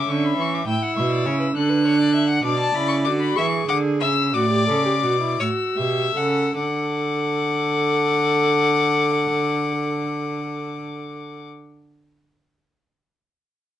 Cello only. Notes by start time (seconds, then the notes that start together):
0.08 D3
0.37 E3
0.66 A2
0.97 B2
1.26 C#3
1.55 D3
2.44 B2
2.75 C#3
3.06 D3
3.37 E3
3.68 D3
4.01 C#3
4.34 A2
4.69 C#3
5.03 B2
5.40 A2
5.77 B2
6.16 C#3
6.56 D3